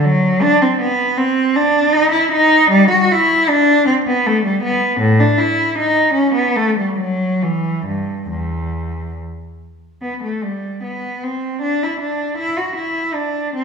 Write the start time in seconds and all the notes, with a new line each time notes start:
0.05 F#3
0.42 D4
0.62 C4
0.81 B3
1.17 C4
1.55 D4
1.93 D#4
2.12 E4
2.32 D#4
2.71 G3
2.91 F#4
3.12 E4
3.49 D4
3.86 C4
4.07 B3
4.26 A3
4.45 G3
4.63 B3
5.00 A2
5.20 D4
5.38 E4
5.79 D#4
6.15 C#4
6.35 B3
6.56 A3
6.79 G3
6.99 F#3
7.43 E3
7.87 G2
8.31 E2
10.02 B3
10.23 A3
10.43 G3
10.84 B3
11.24 C4
11.62 D4
11.83 E4
12.01 D4
12.38 E4
12.58 F#4
12.76 E4
13.15 D4
13.56 C4